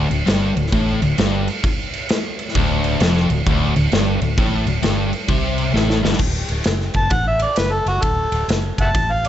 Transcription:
0.10 0.26 D1 medium
0.10 0.23 D2 medium
0.10 crash medium
0.26 0.55 G1 loud
0.26 0.55 G2 loud
0.26 snare loud
0.26 crash medium
0.56 0.71 D1 medium
0.56 0.69 D2 medium
0.56 crash medium
0.67 snare soft
0.72 1.00 A1 medium
0.72 1.01 A2 loud
0.72 kick loud
0.72 crash medium
1.02 1.17 D1 medium
1.02 1.15 D2 medium
1.02 crash medium
1.18 1.46 G1 medium
1.18 1.47 G2 loud
1.18 snare loud
1.18 crash medium
1.48 crash medium
1.64 kick loud
1.64 crash medium
1.93 crash medium
2.09 snare loud
2.09 crash medium
2.39 crash medium
2.49 snare soft
2.55 2.98 D1 loud
2.55 3.00 D2 loud
2.55 kick loud
2.55 crash medium
2.84 crash medium
3.00 3.28 F1 loud
3.00 3.29 F2 loud
3.00 snare loud
3.00 crash medium
3.17 snare soft
3.30 3.45 D1 medium
3.30 3.44 D2 medium
3.30 crash medium
3.47 3.74 D1 medium
3.47 3.75 D2 loud
3.47 kick loud
3.47 crash medium
3.76 3.91 D1 medium
3.76 3.89 D2 medium
3.76 crash medium
3.92 4.20 G1 loud
3.92 4.21 G2 loud
3.92 snare loud
3.92 crash medium
4.21 4.37 D1 medium
4.21 4.35 D2 medium
4.21 crash medium
4.38 4.65 A1 medium
4.38 4.66 A2 loud
4.38 kick loud
4.38 crash medium
4.66 4.82 D1 medium
4.66 4.80 D2 medium
4.66 crash medium
4.82 5.11 G1 medium
4.82 5.11 G2 loud
4.82 snare loud
4.82 crash medium
5.13 crash medium
5.28 5.71 C2 medium
5.28 5.74 C3 loud
5.28 kick loud
5.28 crash medium
5.58 crash medium
5.74 6.02 A1 loud
5.74 6.03 A2 loud
5.74 snare medium
5.90 snare medium
6.03 6.19 G1 medium
6.03 6.20 G2 loud
6.03 snare medium
6.13 snare medium
6.19 6.42 D1 medium
6.19 kick loud
6.19 crash loud
6.49 6.62 D1 medium
6.49 ride medium
6.64 6.88 F#1 medium
6.64 snare loud
6.64 ride loud
6.81 snare soft
6.94 7.07 F#1 medium
6.94 7.13 A5 loud
6.94 kick medium
6.94 ride medium
7.10 7.45 A1 medium
7.10 7.27 F#5 medium
7.10 kick loud
7.10 ride medium
7.27 7.42 E5 medium
7.39 7.60 D5 medium
7.39 ride medium
7.56 7.79 F#1 medium
7.56 7.74 B4 medium
7.56 snare loud
7.56 ride medium
7.72 7.87 A4 medium
7.86 7.99 F#1 medium
7.86 8.04 F#4 loud
7.86 ride medium
8.02 8.25 D1 medium
8.02 8.48 A4 medium
8.02 kick loud
8.02 ride medium
8.32 8.44 D1 medium
8.32 ride medium
8.48 8.70 F#1 medium
8.48 snare loud
8.48 ride medium
8.78 8.91 F#1 medium
8.78 8.88 E5 medium
8.78 8.89 F#5 medium
8.78 9.13 A5 medium
8.78 kick medium
8.78 ride medium
8.94 9.29 A1 medium
8.94 kick loud
8.94 ride medium
9.11 9.29 F5 medium
9.25 ride medium

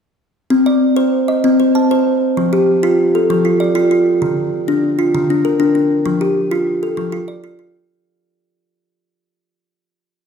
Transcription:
0.50 0.82 C4 medium
0.66 1.13 D5 medium
0.96 1.28 C5 medium
1.28 1.75 D#5 medium
1.44 1.75 C4 medium
1.60 1.90 C5 medium
1.75 2.22 A5 medium
1.91 2.22 C5 medium
2.37 2.68 F3 medium
2.53 2.99 G4 medium
2.83 3.14 F4 medium
3.15 3.61 A4 medium
3.30 3.61 F3 medium
3.45 3.74 F4 medium
3.60 4.07 D5 medium
3.75 3.90 F4 medium
3.91 4.38 F4 medium
4.22 4.53 D3 medium
4.68 4.99 D4 medium
4.99 5.45 F4 medium
5.15 5.45 D3 medium
5.30 5.59 D4 medium
5.45 5.91 A#4 medium
5.60 5.74 D4 medium
5.75 6.22 D4 medium
6.06 6.37 F3 medium
6.21 6.67 G4 medium
6.51 6.83 F4 medium
6.83 7.29 A4 medium
6.97 7.29 F3 medium
7.12 7.42 F4 medium
7.28 7.75 D5 medium
7.44 7.58 F4 medium
7.59 8.05 F4 medium

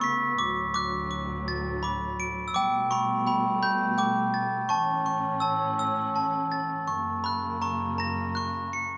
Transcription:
0.00 0.37 C#3 medium
0.00 0.37 A3 medium
0.00 0.37 B3 medium
0.00 0.39 B5 medium
0.00 0.35 C#6 medium
0.00 0.39 A6 medium
0.00 0.39 B6 medium
0.39 2.53 D2 medium
0.39 2.53 A2 medium
0.39 2.53 F#3 medium
0.39 0.55 D6 medium
0.74 1.09 D6 medium
0.74 2.19 F#6 medium
1.11 1.83 D6 medium
1.48 2.55 A6 medium
1.83 2.32 B5 medium
1.83 2.53 D6 medium
2.20 2.55 D7 medium
2.48 2.54 E6 medium
2.54 4.68 B2 medium
2.54 4.68 G3 medium
2.54 4.68 A3 medium
2.54 3.25 G5 medium
2.54 2.70 D6 medium
2.91 3.26 B5 medium
2.91 3.07 C#6 medium
3.27 3.97 G5 medium
3.27 3.61 B5 medium
3.63 3.99 B5 medium
3.63 4.70 G6 medium
3.98 4.70 G5 medium
3.98 4.72 D6 medium
4.34 4.70 A6 medium
4.69 6.87 A2 medium
4.69 6.87 E3 medium
4.69 6.87 C#4 medium
4.69 5.40 A5 medium
4.69 5.05 C#6 medium
5.06 6.52 C#6 medium
5.40 6.14 A5 medium
5.40 5.78 E6 medium
5.79 6.89 E6 medium
6.16 6.89 A5 medium
6.52 6.89 A6 medium
6.88 8.98 F#2 medium
6.88 8.98 C#3 medium
6.88 8.98 A#3 medium
6.88 7.27 C#6 medium
7.24 7.59 B5 medium
7.24 8.34 F#6 medium
7.62 7.97 A#5 medium
7.62 8.36 C#6 medium
7.98 8.15 A#5 medium
7.98 8.98 A#6 medium
8.35 8.98 C#6 medium
8.35 8.98 F#6 medium
8.73 8.98 C#7 medium

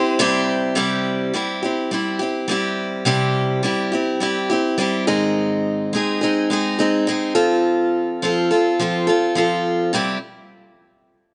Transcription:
0.00 0.19 C4 medium
0.00 0.19 E4 medium
0.00 0.20 G4 medium
0.00 0.49 C5 loud
0.19 0.74 C3 loud
0.19 0.74 G3 medium
0.19 0.75 C4 medium
0.19 0.76 E4 loud
0.19 0.76 G4 loud
0.75 1.33 C3 medium
0.75 1.32 G3 medium
0.75 1.34 C4 medium
0.75 1.34 E4 medium
0.75 1.34 G4 medium
1.34 1.62 G3 medium
1.34 1.63 C4 medium
1.34 1.63 E4 medium
1.34 1.61 G4 medium
1.63 1.92 C4 soft
1.63 1.92 E4 soft
1.63 1.91 G4 soft
1.91 2.20 G3 medium
1.91 2.21 C4 medium
1.91 2.20 E4 medium
1.91 2.18 G4 medium
2.19 2.48 C4 soft
2.19 2.49 E4 soft
2.19 2.48 G4 medium
2.48 3.05 G3 medium
2.48 3.06 C4 medium
2.48 3.06 E4 medium
2.48 3.06 G4 medium
3.05 3.63 C3 medium
3.05 3.62 G3 medium
3.05 3.64 C4 medium
3.05 3.63 E4 medium
3.05 3.64 G4 medium
3.63 3.92 G3 medium
3.63 3.92 C4 medium
3.63 3.92 E4 medium
3.63 3.91 G4 medium
3.92 4.20 C4 medium
3.92 4.21 E4 medium
3.92 4.21 G4 medium
4.20 4.49 G3 medium
4.20 4.50 C4 medium
4.20 4.50 E4 medium
4.20 4.48 G4 medium
4.50 4.77 C4 soft
4.50 4.79 E4 medium
4.50 4.78 G4 medium
4.78 5.07 G3 medium
4.78 5.07 C4 medium
4.78 5.07 E4 medium
4.78 5.07 G4 medium
5.07 5.94 G#2 medium
5.07 5.94 D#3 medium
5.07 5.92 G#3 medium
5.07 5.94 C4 medium
5.07 5.93 D#4 medium
5.07 5.93 G#4 medium
5.93 6.21 G#3 medium
5.93 6.22 C4 medium
5.93 6.22 D#4 medium
5.93 6.20 G#4 medium
6.21 6.49 G#3 soft
6.21 6.50 C4 medium
6.21 6.51 D#4 medium
6.21 6.50 G#4 medium
6.50 6.79 G#3 medium
6.50 6.79 C4 medium
6.50 6.79 D#4 medium
6.50 6.77 G#4 medium
6.79 7.06 G#3 soft
6.79 7.07 C4 medium
6.79 7.08 D#4 medium
6.79 7.07 G#4 medium
7.07 7.36 G#3 medium
7.07 7.34 C4 medium
7.07 7.35 D#4 medium
7.07 7.34 G#4 medium
7.35 8.21 F3 medium
7.35 8.22 C4 medium
7.35 8.22 F4 medium
7.35 8.21 A4 medium
8.22 8.51 F3 medium
8.22 8.51 C4 medium
8.22 8.51 F4 medium
8.22 8.49 A4 medium
8.51 8.79 C4 soft
8.51 8.80 F4 medium
8.51 8.79 A4 medium
8.80 9.08 F3 medium
8.80 9.09 C4 medium
8.80 9.08 F4 medium
8.80 9.06 A4 medium
9.07 9.35 C4 medium
9.07 9.36 F4 medium
9.07 9.36 A4 medium
9.35 9.93 F3 medium
9.35 9.93 C4 medium
9.35 9.94 F4 medium
9.35 9.95 A4 medium
9.93 10.16 C3 medium
9.93 10.17 G3 medium
9.93 10.17 C4 medium
9.93 10.18 E4 medium
9.93 10.18 G4 medium

